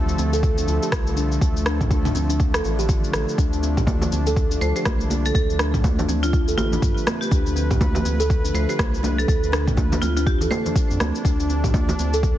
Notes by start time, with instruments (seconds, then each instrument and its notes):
Already playing: analog synth bass D2, analog synth pad D3 F3 A3 A4
0.09 cabasa
0.18 analog synth bass D2, kalimba C4, cabasa
0.33 kalimba A4, cabasa
0.43 kick, cabasa
0.58 kalimba D4, cabasa
0.67 analog synth bass D2, kalimba F4, cabasa
0.83 kalimba G4, cabasa
0.92 analog synth bass C2, kalimba F4, kick, cross-stick, cabasa
1.07 cabasa
1.17 kalimba D4, cabasa
1.32 cabasa
1.41 analog synth bass D2, kick, cabasa
1.57 cabasa
1.66 kalimba D4, cross-stick, cabasa
1.81 kick, mid tom, cabasa
1.91 kalimba F4, kick, cabasa
2.05 kalimba D4, mid tom, cabasa
2.15 analog synth bass D2, kalimba C4, cabasa
2.30 kalimba D4, cabasa
2.40 analog synth bass D2, analog synth pad D4, kalimba D4, kick, cabasa
2.54 kalimba A4, cross-stick, cabasa
2.64 analog synth bass A1, kalimba F4, cabasa
2.79 kalimba G4, cabasa
2.89 kalimba F4, kick, cabasa
3.04 cabasa
3.13 analog synth bass A1, kalimba A4, cross-stick, cabasa
3.29 cabasa
3.38 analog synth bass D2, kalimba D4, kick, cabasa
3.53 kalimba D4, cabasa
3.63 kalimba C4, cabasa
3.77 kalimba G4, kick, mid tom, cabasa
3.87 kalimba F4, kick, high conga, cabasa
4.01 high conga, low conga, cabasa
4.12 analog synth bass D2, kalimba C4, cabasa
4.27 kalimba A4, cabasa
4.36 kick, cabasa
4.51 kalimba D4, cabasa
4.61 analog synth bass D2, kalimba F4, marimba C5, cabasa
4.76 kalimba G4, marimba C5, cabasa
4.85 analog synth bass C2, kick, cross-stick, high conga, cabasa
5.01 cabasa
5.10 kalimba D4, high conga, cabasa
5.25 marimba A4, cabasa
5.35 analog synth bass D2, marimba A4, kick, cabasa
5.50 cabasa
5.59 kalimba D4, cross-stick, cabasa
5.74 kick, mid tom, cabasa
5.84 kalimba F4, kick, high conga, cabasa
5.99 kalimba D4, high conga, low conga, cabasa
6.08 analog synth bass D2, kalimba C4, cabasa
6.23 kalimba D4, marimba F4, cabasa
6.33 kalimba D4, analog synth pad B4, kick, cabasa
6.48 kalimba A4, cabasa
6.57 analog synth bass A1, marimba F4, high conga, cabasa
6.72 kalimba D4, low conga, cabasa
6.82 analog synth bass G2, kick, cabasa
6.98 cabasa
7.07 kalimba C4, cross-stick, high conga, cabasa
7.21 marimba G4, cabasa
7.31 analog synth bass D2, kalimba D4, kick, cabasa
7.46 kalimba D4, cabasa
7.56 kalimba C4, cabasa
7.71 kalimba G4, kick, mid tom, cabasa
7.81 kalimba F4, kick, high conga, cabasa
7.95 high conga, low conga, cabasa
8.05 analog synth bass D2, kalimba C4, cabasa
8.20 kalimba A4, cabasa
8.30 kick, cabasa
8.44 kalimba D4, cabasa
8.54 analog synth bass D2, kalimba F4, marimba C5, cabasa
8.69 kalimba G4, marimba C5, cabasa
8.79 analog synth bass C2, kick, cross-stick, high conga, cabasa
8.94 cabasa
9.03 kalimba D4, high conga, cabasa
9.18 marimba A4, cabasa
9.28 analog synth bass D2, marimba A4, kick, cabasa
9.44 cabasa
9.52 kalimba D4, cross-stick, cabasa
9.68 kick, mid tom, high conga, cabasa
9.77 kalimba F4, kick, high conga, cabasa
9.92 kalimba D4, high conga, low conga, cabasa
10.02 analog synth bass D2, kalimba C4, marimba F4, cabasa
10.17 kalimba D4, marimba F4, cabasa
10.26 analog synth pad D4, marimba G4, kick, cabasa
10.41 kalimba A4, low conga, cabasa
10.51 kalimba G4, marimba C5, high conga, cabasa
10.66 kalimba D4, low conga, cabasa
10.76 kick, cabasa
10.90 analog synth bass F2, cabasa
11.00 analog synth bass D2, kalimba C4, cross-stick, high conga, cabasa
11.15 cabasa
11.25 analog synth bass D2, kalimba D4, kick, cabasa
11.40 kalimba D4, cabasa
11.50 kalimba C4, cabasa
11.64 kalimba G4, kick, mid tom, cabasa
11.74 kalimba F4, kick, high conga, cabasa
11.89 high conga, low conga, cabasa
11.99 analog synth bass D2, kalimba C4, cabasa
12.14 kalimba A4, cabasa
12.23 kick, cabasa